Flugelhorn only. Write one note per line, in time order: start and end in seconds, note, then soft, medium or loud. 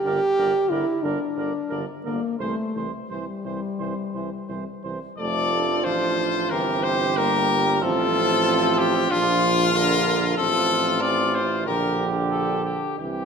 0.06 0.21 A#4 medium
0.38 0.53 A#4 medium
0.71 0.86 A#4 medium
1.04 1.19 A#4 medium
1.37 1.52 A#4 medium
1.69 1.85 A#4 medium
2.05 2.21 A#4 medium
2.39 2.55 C5 medium
2.76 2.92 C5 medium
3.10 3.26 C5 medium
3.45 3.61 C5 medium
3.79 3.95 C5 medium
4.14 4.30 C5 medium
4.49 4.65 C5 medium
4.83 4.99 C5 medium
5.18 5.86 A4 medium
5.85 6.54 F4 medium
6.52 7.81 G4 medium
7.81 9.08 F4 medium
9.10 9.78 F4 loud
9.77 10.38 A#4 medium
10.38 11.69 F4 medium
11.67 12.82 G4 medium
12.99 13.25 G4 medium